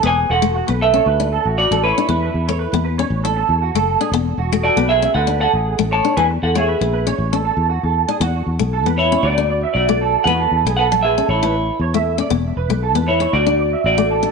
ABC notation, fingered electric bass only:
X:1
M:4/4
L:1/16
Q:1/4=117
K:Emix
V:1 name="Fingered electric bass" clef=bass
E,,,2 E,,,3 B,,,3 D,,3 A,,,2 A,,,2 z | E,,2 E,,3 E,,3 A,,,3 E,,2 F,,,2 z | E,,,2 E,,,3 B,,,3 D,,3 A,,,2 A,,,2 z | E,,2 E,,3 ^A,,,3 =A,,,3 E,,2 E,,2 z |
E,,2 E,, B,,,2 E,,3 D,,4 B,,,4 | E,,2 E,, B,,,2 ^A,,,3 =A,,,4 E,,4 | E,,,2 E,,, B,,,2 E,,3 D,,4 A,,,4 |]